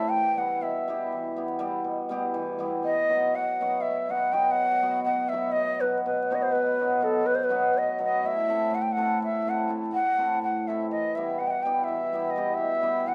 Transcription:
Already playing: hammered dulcimer A2, ney E5
0.09 hammered dulcimer E3, ney G5
0.35 hammered dulcimer G3 B3 E4 G4, ney F#5
0.61 hammered dulcimer B2, ney E5
0.88 hammered dulcimer G3 B3 E4 G4
1.12 hammered dulcimer E3
1.36 hammered dulcimer G3 B3 E4 G4
1.59 hammered dulcimer G3 B3 E4 G4
1.84 hammered dulcimer B2
2.09 hammered dulcimer G3 B3 E4 G4
2.34 hammered dulcimer E3
2.59 hammered dulcimer G3 B3 E4 G4
2.83 hammered dulcimer B2, ney D#5
3.09 hammered dulcimer F#3 B3 D#4 F#4
3.34 hammered dulcimer B2, ney F#5
3.61 hammered dulcimer F#3 B3 D#4 F#4
3.81 hammered dulcimer B2, ney E5
4.09 hammered dulcimer F#3 B3 D#4 F#4, ney F#5
4.31 hammered dulcimer F#3 B3 D#4 F#4, ney G5
4.51 hammered dulcimer B2, ney F#5
4.81 hammered dulcimer F#3 B3 D#4 F#4
5.04 hammered dulcimer B2, ney F#5
5.29 hammered dulcimer F#3, ney E5
5.33 hammered dulcimer B3 D#4 F#4
5.52 hammered dulcimer B2, ney D#5
5.80 hammered dulcimer F#3 B3 D#4 F#4, ney B4
6.05 hammered dulcimer B2, ney B4
6.30 hammered dulcimer F#3 B3 D#4 F#4, ney C5
6.35 ney D#5
6.42 ney C5
6.52 hammered dulcimer B2, ney B4
6.79 hammered dulcimer F#3 B3 D#4 F#4
7.01 hammered dulcimer F#3 B3 D#4 F#4, ney A4
7.23 hammered dulcimer B2, ney B4
7.35 ney C5
7.44 ney B4
7.49 hammered dulcimer F#3 B3 D#4 F#4
7.73 hammered dulcimer B2
7.78 ney D#5
7.98 hammered dulcimer F#3 B3 D#4 F#4
8.04 ney D#5
8.23 hammered dulcimer A2, ney E5
8.48 hammered dulcimer A3 C4 E4 A4
8.70 hammered dulcimer A2
8.74 ney F#5
8.82 ney G5
8.92 ney F#5
8.97 hammered dulcimer A3 C4 E4 A4
9.22 hammered dulcimer A2, ney E5
9.47 hammered dulcimer A3 C4 E4 A4, ney F#5
9.68 hammered dulcimer A3 C4 E4 A4
9.91 hammered dulcimer A2, ney F#5
10.17 hammered dulcimer A3 C4 E4 A4
10.42 hammered dulcimer A2, ney F#5
10.67 hammered dulcimer A3 C4 E4 A4, ney E5
10.91 hammered dulcimer E3, ney D#5
11.15 hammered dulcimer G3 B3 E4 G4, ney E5
11.39 hammered dulcimer B2, ney F#5
11.47 ney F#5 G5
11.63 hammered dulcimer G3 B3 E4 G4, ney G5
11.84 ney E5
11.88 hammered dulcimer E3
12.13 hammered dulcimer G3 B3 E4 G4
12.30 ney D#5
12.36 hammered dulcimer G3 B3 E4 G4
12.54 hammered dulcimer B2, ney E5
12.82 hammered dulcimer G3 B3 E4 G4
13.06 hammered dulcimer E3, ney F#5

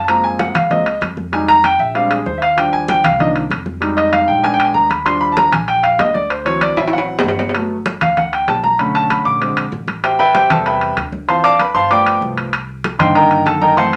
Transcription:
Already playing: upright bass F#1
0.04 grand piano F3 G#3 A5, high timbale
0.08 grand piano A#3 C4 A#5, high conga
0.24 grand piano G#5, high conga
0.39 grand piano F#5, high conga, high timbale
0.54 upright bass C#2, grand piano F5, low conga, high timbale
0.70 grand piano F3 G#3 A#3 C4 D#5, high conga, low conga, high timbale
0.86 high conga, high timbale
1.01 upright bass F2, high conga, high timbale
1.17 high conga
1.32 grand piano G3 G#3 D#4 G#5, high conga, high timbale
1.48 grand piano A#5, high conga, high timbale
1.64 grand piano G5, high conga, high timbale
1.79 upright bass A#1, grand piano E5, high conga
1.94 grand piano G3 G#3 C4 D4 F5, high conga, high timbale
2.10 grand piano G#4, high conga, high timbale
2.26 upright bass D#2, grand piano C5, high conga
2.38 grand piano E5
2.42 grand piano F5, high timbale
2.56 grand piano F3 G3 D4 G5, high conga, high timbale
2.73 grand piano G#5, high conga
2.88 grand piano G5, high conga, high timbale
3.04 upright bass C2, grand piano F5, low conga, high timbale
3.19 grand piano D#3 F3 A#3 D4 D#5, high conga, low conga, high timbale
3.35 high conga, high timbale
3.50 upright bass F2, high conga, high timbale
3.66 high conga
3.81 grand piano G3 G#3 D#4, high conga, high timbale
3.97 grand piano D#5, high conga, high timbale
4.12 grand piano F5, high conga, high timbale
4.28 upright bass A#1, grand piano G5, high conga
4.43 grand piano G#3 B3 D4 G#5, high conga, high timbale
4.54 grand piano G5
4.59 high conga, high timbale
4.65 grand piano G#5
4.74 upright bass D#2, grand piano A#5, high conga
4.90 grand piano B5, high conga, high timbale
5.05 grand piano F3 G3 D4 C6, high conga, high timbale
5.21 grand piano B5, high conga
5.32 grand piano A5
5.37 grand piano A#5, high conga, high timbale
5.52 upright bass A#1, grand piano G#5, low conga, high timbale
5.68 grand piano G5, high conga, high timbale
5.83 grand piano F5, high conga, high timbale
5.99 upright bass D2, grand piano D#5, high conga, high timbale, low timbale
6.14 grand piano D5, high conga
6.30 grand piano C5, high conga, high timbale
6.45 grand piano E3 F#3 C4 C#5, high conga, high timbale
6.61 grand piano D5, high conga, high timbale
6.76 upright bass A1, grand piano E5, high conga, high timbale
6.88 high timbale
6.93 grand piano F#5, high conga
6.98 high timbale
7.08 high conga
7.19 low timbale
7.23 upright bass G1, high conga
7.28 low timbale
7.39 high conga, low timbale
7.49 low timbale
7.54 grand piano F#3 A3 B3, high conga, high timbale
7.70 high conga
7.86 high conga, high timbale
8.01 upright bass D2, grand piano F5, low conga, high timbale
8.17 grand piano F#5, high conga, low conga, high timbale
8.32 grand piano G5, high conga, high timbale
8.47 upright bass B1, grand piano A5, high conga, high timbale, low timbale
8.64 grand piano A#5, high conga
8.78 grand piano D3 A3 C#4 B5, high conga, high timbale
8.95 grand piano A5, high conga, high timbale
9.10 grand piano B5, high conga, high timbale
9.25 upright bass A#1, grand piano D6, high conga
9.41 grand piano D3 G#3 C4, high conga, high timbale
9.57 high conga, high timbale
9.72 upright bass A1, high conga
9.88 high conga, high timbale
10.04 grand piano G4 C5 E5 G5, high conga, high timbale
10.19 grand piano B4 E5 G5 B5, high conga
10.35 grand piano G4 C5 E5 G5, high conga, high timbale
10.50 upright bass E2, grand piano C3 G3 B3 A4 C5 E5 A5, low conga, high timbale
10.66 grand piano B4 E5 G5 B5, high conga, high timbale
10.81 high conga, high timbale
10.97 upright bass D2, high conga, high timbale
11.12 high conga
11.28 grand piano E3 F3 C4 C5 F5 A5 C6, high conga, high timbale
11.44 grand piano D5 F5 A5 D6, high conga, high timbale
11.59 grand piano B4 B5, high conga, high timbale
11.74 upright bass G1, grand piano C5 F5 A5 C6, high conga
11.90 grand piano F3 A3 B3 D5 G5 B5 D6, high conga, high timbale
12.06 high conga, high timbale
12.21 upright bass C2, high conga
12.37 high conga, high timbale
12.53 high conga, high timbale
12.69 high conga
12.84 high conga, high timbale
12.98 upright bass G2, grand piano D3 D#3 A#3 C5 D#5 G5 C6, low conga, high timbale
13.15 grand piano A#4 D#5 G5 A#5, high conga, high timbale
13.31 high conga, high timbale
13.46 upright bass F#2, grand piano A4 A5, high conga, high timbale
13.61 grand piano A#4 D#5 G5 A#5, high conga
13.76 grand piano E3 A3 C4 C5 F#5 A5 C6, high timbale
13.93 high conga, high timbale

